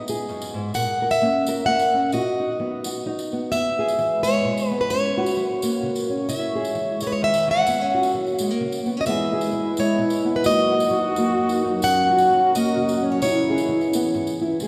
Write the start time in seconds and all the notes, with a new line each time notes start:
Already playing: G#3 B3 D#4
0.08 G#4, tambourine
0.29 F#2, tambourine
0.42 tambourine
0.54 G#2
0.74 A#2 A#4 F#5, tambourine
1.02 A#4
1.11 E5, tambourine
1.22 A#3 C#4
1.47 A#4, tambourine
1.66 A#3 A#4 F#5, tambourine
1.79 tambourine
1.94 C#4
2.12 B2 F#4 D#5, tambourine
2.40 D#4
2.60 F#3 B3
2.84 F#4, tambourine
3.06 F#3 D#4
3.19 tambourine
3.32 B3, tambourine
3.52 E2 B3 E5, tambourine
3.79 G#4
3.88 tambourine
3.99 E3, tambourine
4.23 G#3 C#5, tambourine
4.45 B2
4.58 tambourine
4.68 B3 B4
4.81 B4
4.90 F#2 C#4 C#5, tambourine
5.17 F#4
5.26 tambourine
5.37 F#3, tambourine
5.62 A#3, tambourine
5.83 C#3
5.96 tambourine
6.10 C#4
6.29 C#3 E4 E5, tambourine
6.55 G#4
6.65 tambourine
6.75 E3, tambourine
7.00 G#3 C#5, tambourine
7.07 B4
7.12 C#5
7.22 D#3 E5
7.34 tambourine
7.48 E3 F#5
7.67 F#2 B3, tambourine
7.79 C#4, tambourine
7.94 F#4
8.03 tambourine
8.13 F#3, tambourine
8.26 tambourine
8.39 G#3, tambourine
8.50 A#3
8.61 C#3
8.72 tambourine
8.86 B3, tambourine
8.97 C#4
9.01 D#5
9.06 E2 E3 G#3 B3 E4 G#4 E5, tambourine
9.33 G#4
9.41 tambourine
9.52 E3, tambourine
9.77 G#3 C#5, tambourine
9.98 B2
10.10 tambourine
10.25 B3
10.36 B4
10.44 F#2 F#3 A#3 D#4 F#4 D#5, tambourine
10.71 F#4
10.80 tambourine
10.90 F#3, tambourine
11.16 A#3, tambourine
11.37 F#2
11.49 tambourine
11.64 D#4
11.82 F#2 C#4 F#4 F#5, tambourine
12.10 F#4
12.18 tambourine
12.30 F#3, tambourine
12.55 A#3 D#5, tambourine
12.76 C#3
12.89 tambourine
13.02 C#4
13.12 C#5
13.22 C#3 E4 C#5, tambourine
13.50 G#4
13.58 tambourine
13.69 E3
13.81 tambourine
13.93 B3, tambourine
14.04 tambourine
14.14 G#2, tambourine
14.27 tambourine
14.40 E4, tambourine
14.60 C#3 G#3 E4 G#4, tambourine